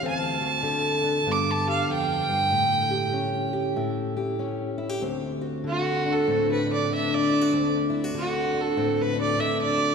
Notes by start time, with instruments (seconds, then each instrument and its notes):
0.03 steel-string acoustic guitar D2 C4
0.07 fiddle A5
0.41 steel-string acoustic guitar F#4
0.63 steel-string acoustic guitar D3
1.03 steel-string acoustic guitar D4
1.26 steel-string acoustic guitar G2 B3
1.32 fiddle D6
1.51 fiddle A5
1.67 steel-string acoustic guitar G4, fiddle F5
1.89 steel-string acoustic guitar F2, fiddle G5
2.27 steel-string acoustic guitar G2
2.50 steel-string acoustic guitar A2 E4
2.90 steel-string acoustic guitar G4
3.13 steel-string acoustic guitar C#4
3.53 steel-string acoustic guitar G4
3.76 steel-string acoustic guitar A2 E4
4.17 steel-string acoustic guitar G4
4.39 steel-string acoustic guitar C#4
4.78 steel-string acoustic guitar E4
4.89 steel-string acoustic guitar G4
5.01 steel-string acoustic guitar D2 C4
5.41 steel-string acoustic guitar F#4
5.64 steel-string acoustic guitar D3, fiddle F#4
6.06 steel-string acoustic guitar D4
6.12 fiddle A4
6.27 steel-string acoustic guitar A2 C4
6.52 fiddle B4
6.66 steel-string acoustic guitar D4
6.73 fiddle D5
6.90 steel-string acoustic guitar D3
6.95 fiddle E5
7.15 fiddle D5
7.30 steel-string acoustic guitar E4
7.41 steel-string acoustic guitar F#4
7.53 steel-string acoustic guitar D2 C4
7.90 steel-string acoustic guitar E4
8.04 steel-string acoustic guitar F#4
8.14 steel-string acoustic guitar D3
8.18 fiddle F#4
8.54 steel-string acoustic guitar D4
8.60 fiddle A4
8.76 steel-string acoustic guitar A2 C4
9.01 fiddle B4
9.15 steel-string acoustic guitar D4
9.21 fiddle D5
9.38 steel-string acoustic guitar D3, fiddle E5
9.62 fiddle D5
9.78 steel-string acoustic guitar F#4